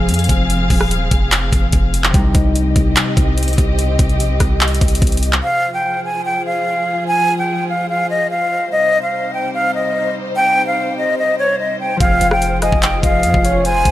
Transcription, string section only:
0.00 2.11 F3 medium
0.00 2.11 C4 medium
0.00 2.11 G#4 medium
0.00 2.11 F5 medium
2.14 5.40 C3 medium
2.14 5.40 C4 medium
2.14 5.40 G4 medium
2.14 5.40 D#5 loud
5.43 8.68 F3 medium
5.43 8.69 F4 medium
5.43 8.68 G#4 medium
5.43 13.91 C5 loud
8.72 11.97 C3 medium
8.72 11.97 G3 medium
8.72 11.97 D#4 medium
12.01 13.91 F3 medium
12.01 13.91 F4 medium
12.01 13.91 G#4 medium

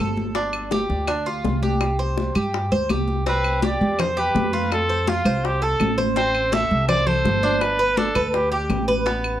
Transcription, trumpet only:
3.29 3.66 B4 loud
3.65 4.02 D5 medium
4.00 4.21 C5 medium
4.19 4.72 B4 medium
4.73 5.10 A4 loud
5.09 5.47 F4 medium
5.45 5.65 G4 medium
5.63 5.99 A4 loud
6.17 6.55 C5 loud
6.54 6.88 E5 loud
6.88 7.08 D5 loud
7.07 7.63 C5 loud
7.61 7.99 B4 loud
7.97 8.29 A4 medium
8.30 8.36 A4 medium
8.34 8.51 G4 medium
8.52 8.86 G4 medium

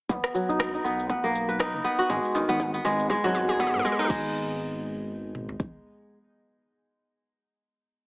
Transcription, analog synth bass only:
0.09 0.19 B1 loud
0.49 0.79 B1 loud
0.84 1.16 B1 loud
1.24 1.75 B1 medium
1.74 1.81 F#1 medium
2.10 2.19 G#1 loud
2.49 2.79 G#1 loud
2.85 3.16 G#1 loud
3.24 3.75 G#1 loud
3.74 3.81 G#2 loud
4.10 5.56 G#1 loud

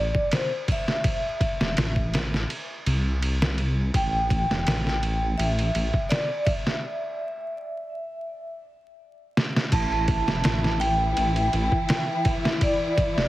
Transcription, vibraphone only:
0.00 0.35 D5 medium
0.33 0.49 C5 medium
0.72 2.11 E5 loud
3.96 5.43 G5 loud
5.38 6.06 E5 loud
6.09 6.47 D5 medium
6.45 8.59 E5 medium
9.73 10.77 A5 loud
10.80 12.29 G5 loud
12.25 12.62 E5 medium
12.63 13.28 D5 medium

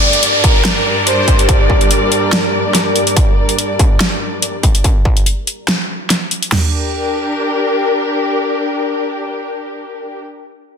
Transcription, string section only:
0.00 4.80 G2 medium
0.00 4.80 G3 medium
0.00 4.80 D4 medium
0.00 4.80 A#4 medium
0.00 4.80 D5 medium
6.52 10.19 D4 medium
6.52 10.19 G4 medium
6.52 10.19 A#4 medium

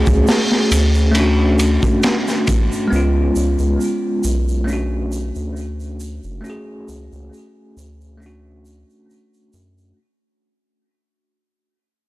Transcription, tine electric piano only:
0.00 1.05 A3 medium
0.00 1.07 C#4 medium
0.00 1.08 F#4 medium
0.00 1.09 G#4 medium
1.12 2.82 A3 medium
1.12 2.83 C#4 medium
1.17 2.84 D4 medium
1.17 2.86 F#4 medium
2.88 4.58 G#3 medium
2.88 4.59 B3 medium
2.93 4.61 C#4 medium
2.93 4.62 F4 medium
4.64 6.34 A3 medium
4.64 6.36 C#4 medium
4.70 6.37 D4 medium
4.70 6.39 F#4 medium
6.41 8.11 A3 medium
6.41 8.13 C#4 medium
6.47 8.14 F#4 medium
6.47 8.15 G#4 medium
8.18 9.87 A3 medium
8.18 9.89 C#4 medium
8.23 9.90 D4 medium
8.23 9.92 F#4 medium

